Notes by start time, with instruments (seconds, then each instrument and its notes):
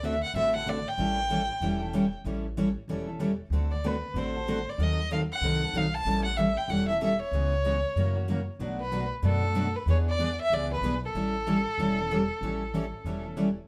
Already playing: upright bass D2
0.03 steel-string acoustic guitar D3 A3 C4 F#4 A4, violin E5
0.23 violin F#5
0.34 upright bass A1, steel-string acoustic guitar D3 A3 C4 F#4 A4, violin E5
0.53 steel-string acoustic guitar C4 F#4 A4, violin F#5
0.66 steel-string acoustic guitar D3 A3 C4 F#4 A4, violin D5
0.88 violin G5
0.98 upright bass A1, steel-string acoustic guitar E3 G3 C#4 E4 A4
1.31 steel-string acoustic guitar E3 G3 C#4 E4 A4
1.60 upright bass E1, steel-string acoustic guitar E3 G3 C#4 E4 A4
1.82 steel-string acoustic guitar C#4 E4 A4
1.94 steel-string acoustic guitar E3 G3 C#4 E4 A4
2.25 upright bass A1, steel-string acoustic guitar E3 G3 C#4 E4 A4
2.57 steel-string acoustic guitar E3 G3 C#4 E4 A4
2.88 upright bass E1, steel-string acoustic guitar E3 G3 C#4 E4 A4
3.07 steel-string acoustic guitar C#4 E4 A4
3.19 steel-string acoustic guitar E3 G3 C#4 E4 A4
3.50 upright bass D2, steel-string acoustic guitar D3 A3 C4 F#4 A4
3.72 violin D5
3.84 steel-string acoustic guitar D3 A3 C4 F#4 A4, violin B4
4.14 upright bass A1, steel-string acoustic guitar D3 A3 C4 F#4 A4
4.18 violin C5
4.35 steel-string acoustic guitar C4 F#4 A4
4.48 steel-string acoustic guitar D3 A3 C4 F#4 A4
4.69 violin D5
4.78 upright bass D#2, steel-string acoustic guitar D#3 F#3 C4 D#4 A4
4.83 violin D#5
5.11 steel-string acoustic guitar D#3 F#3 C4 D#4 A4, violin F5
5.32 violin F#5
5.41 upright bass C2, steel-string acoustic guitar D#3 F#3 C4 D#4 A4
5.62 steel-string acoustic guitar C4 D#4 A4
5.73 upright bass B1, steel-string acoustic guitar D#3 F#3 C4 D#4 A4, violin F5
5.94 violin A5
6.05 upright bass A1, steel-string acoustic guitar E3 G3 C#4 E4 A4
6.25 violin F#5
6.37 steel-string acoustic guitar E3 G3 C#4 E4 A4, violin E5
6.57 violin G5
6.68 upright bass E1, steel-string acoustic guitar E3 G3 C#4 E4 A4, violin F#5
6.88 steel-string acoustic guitar C#4 E4 A4, violin E5
7.01 steel-string acoustic guitar E3 G3 C#4 E4 A4, violin E5
7.22 violin C#5
7.31 upright bass C#2, steel-string acoustic guitar C#3 E3 G#3 B3 C#4 E4 G#4
7.65 steel-string acoustic guitar C#3 E3 G#3 B3 C#4 E4 G#4
7.96 upright bass F#2, steel-string acoustic guitar C#3 E3 F#3 A#3 C#4 E4 F#4 A#4
8.16 steel-string acoustic guitar A#3 C#4 F#4
8.28 steel-string acoustic guitar C#3 E3 F#3 A#3 C#4 E4 F#4 A#4
8.59 upright bass B1, steel-string acoustic guitar B2 F#3 A3 D4 F#4 B4
8.81 violin B4
8.92 steel-string acoustic guitar B2 F#3 A3 D4 F#4 B4
9.22 upright bass F#2, steel-string acoustic guitar B2 F#3 A3 D4 F#4 B4, violin A4
9.43 steel-string acoustic guitar A3 D4 F#4
9.55 steel-string acoustic guitar B2 F#3 A3 D4 F#4 B4
9.76 violin B4
9.86 upright bass E2, steel-string acoustic guitar E3 B3 D4 G#4 B4, violin C#5
10.09 violin D5
10.18 steel-string acoustic guitar E3 B3 D4 G#4 B4
10.41 violin E5
10.50 upright bass C#2, steel-string acoustic guitar E3 B3 D4 G#4 B4, violin D5
10.70 steel-string acoustic guitar B3 D4 G#4, violin B4
10.81 upright bass B1, steel-string acoustic guitar E3 B3 D4 G#4 B4
11.05 violin A4
11.14 upright bass A1, steel-string acoustic guitar E3 G3 C#4 E4 A4
11.47 steel-string acoustic guitar E3 G3 C#4 E4 A4
11.78 upright bass E1, steel-string acoustic guitar E3 G3 C#4 E4 A4
11.99 steel-string acoustic guitar C#4 E4 A4
12.12 steel-string acoustic guitar E3 G3 C#4 E4 A4
12.41 upright bass A1, steel-string acoustic guitar E3 G3 C#4 E4 A4
12.74 steel-string acoustic guitar E3 G3 C#4 E4 A4
13.05 upright bass E1, steel-string acoustic guitar E3 G3 C#4 E4 A4
13.23 steel-string acoustic guitar C#4 E4 A4
13.36 steel-string acoustic guitar E3 G3 C#4 E4 A4